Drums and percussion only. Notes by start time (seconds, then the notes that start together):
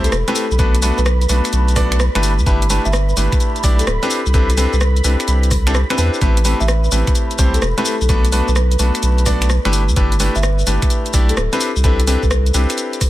0.04 closed hi-hat, shaker
0.12 cross-stick, shaker
0.28 closed hi-hat, shaker
0.36 open hi-hat, shaker
0.51 shaker
0.59 kick, closed hi-hat, shaker
0.75 closed hi-hat, shaker
0.82 open hi-hat, shaker
0.98 shaker
1.06 cross-stick, shaker
1.21 closed hi-hat, shaker
1.29 open hi-hat, shaker
1.45 finger snap, closed hi-hat, shaker
1.53 closed hi-hat, shaker
1.68 closed hi-hat, shaker
1.76 kick, cross-stick, open hi-hat, shaker
1.92 finger snap, closed hi-hat, shaker
2.00 cross-stick, shaker
2.15 finger snap, closed hi-hat, shaker
2.23 open hi-hat, shaker
2.39 shaker
2.46 kick, closed hi-hat, shaker
2.62 closed hi-hat, shaker
2.70 open hi-hat, shaker
2.85 shaker
2.93 cross-stick, shaker
3.09 shaker
3.17 open hi-hat, shaker
3.32 finger snap, kick, closed hi-hat, shaker
3.40 closed hi-hat, shaker
3.56 closed hi-hat, shaker
3.64 kick, open hi-hat, shaker
3.79 closed hi-hat, shaker
3.87 cross-stick, shaker
4.03 closed hi-hat, shaker
4.11 open hi-hat, shaker
4.26 shaker
4.34 kick, closed hi-hat, shaker
4.50 closed hi-hat, shaker
4.58 open hi-hat, shaker
4.73 shaker
4.81 cross-stick, shaker
4.97 closed hi-hat, shaker
5.04 open hi-hat, shaker
5.20 finger snap, closed hi-hat, shaker
5.28 closed hi-hat, shaker
5.43 closed hi-hat, shaker
5.51 kick, cross-stick, open hi-hat, shaker
5.67 finger snap, closed hi-hat, shaker
5.75 cross-stick, shaker
5.90 finger snap, closed hi-hat, shaker
5.98 open hi-hat, shaker
6.14 shaker
6.21 kick, closed hi-hat, shaker
6.37 closed hi-hat, shaker
6.45 open hi-hat, shaker
6.61 shaker
6.68 cross-stick, shaker
6.84 shaker
6.92 open hi-hat, shaker
7.07 finger snap, kick, closed hi-hat, shaker
7.15 closed hi-hat, shaker
7.31 closed hi-hat, shaker
7.39 kick, open hi-hat, shaker
7.54 closed hi-hat, shaker
7.62 cross-stick, shaker
7.78 closed hi-hat, shaker
7.86 open hi-hat, shaker
8.01 shaker
8.09 kick, closed hi-hat, shaker
8.25 closed hi-hat, shaker
8.32 open hi-hat, shaker
8.48 shaker
8.56 cross-stick, shaker
8.71 closed hi-hat, shaker
8.79 open hi-hat, shaker
8.95 finger snap, closed hi-hat, shaker
9.03 closed hi-hat, shaker
9.18 closed hi-hat, shaker
9.26 kick, cross-stick, open hi-hat, shaker
9.42 finger snap, closed hi-hat, shaker
9.50 cross-stick, shaker
9.65 finger snap, closed hi-hat, shaker
9.73 open hi-hat, shaker
9.89 shaker
9.96 kick, closed hi-hat, shaker
10.12 closed hi-hat, shaker
10.20 open hi-hat, shaker
10.35 shaker
10.43 cross-stick, shaker
10.59 shaker
10.67 open hi-hat, shaker
10.82 finger snap, kick, closed hi-hat, shaker
10.90 closed hi-hat, shaker
11.06 closed hi-hat, shaker
11.14 kick, open hi-hat, shaker
11.29 closed hi-hat, shaker
11.37 cross-stick, shaker
11.53 closed hi-hat, shaker
11.61 open hi-hat, shaker
11.76 shaker
11.84 kick, closed hi-hat, shaker
12.00 closed hi-hat, shaker
12.07 open hi-hat, shaker
12.23 kick, shaker
12.31 cross-stick, shaker
12.46 closed hi-hat, shaker
12.54 open hi-hat, shaker
12.70 finger snap, closed hi-hat, shaker
12.78 closed hi-hat, shaker
12.93 closed hi-hat, shaker
13.01 kick, cross-stick, open hi-hat, shaker